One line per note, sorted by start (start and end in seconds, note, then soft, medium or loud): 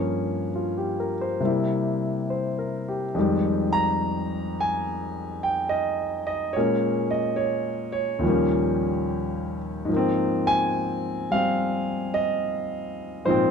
0.00 1.39 G2 soft
0.00 1.40 F3 soft
0.00 1.41 A#3 soft
0.00 1.42 C#4 medium
0.00 0.49 C#5 medium
0.55 0.96 F4 soft
0.78 1.14 G4 soft
1.00 1.25 A#4 soft
1.21 1.50 C5 soft
1.40 3.14 C3 soft
1.40 3.15 G3 soft
1.40 3.16 A#3 soft
1.45 3.17 E4 medium
2.30 2.85 C5 soft
2.59 3.03 A#4 soft
2.88 3.32 G4 soft
3.15 6.56 F2 soft
3.15 6.56 D#3 soft
3.15 6.55 G#3 soft
3.19 6.58 G3 medium
3.73 4.54 A#5 loud
4.61 5.40 G#5 medium
5.43 5.71 G5 medium
5.69 6.25 D#5 medium
6.27 6.55 D#5 medium
6.53 8.19 A#2 medium
6.53 8.23 G#3 soft
6.53 8.23 A#3 soft
6.53 7.08 C#5 medium
6.57 8.23 C#4 medium
7.11 7.17 D#5 medium
7.36 7.91 C#5 medium
7.92 9.58 C#5 medium
8.19 9.88 D#2 medium
8.19 9.89 A#2 medium
8.23 9.87 F3 medium
8.23 9.91 G3 medium
8.28 9.91 A#3 medium
8.28 9.93 C#4 medium
9.85 13.23 G#2 medium
9.85 13.25 F3 medium
9.93 13.29 A#3 soft
9.93 11.32 C4 medium
10.47 11.28 G#5 loud
11.31 13.26 G3 soft
11.31 13.28 C4 soft
11.31 12.19 F5 medium
12.14 13.29 D#5 medium
13.25 13.51 G#2 medium
13.25 13.51 A#2 medium
13.25 13.51 F3 medium
13.25 13.51 C5 medium
13.29 13.51 C4 medium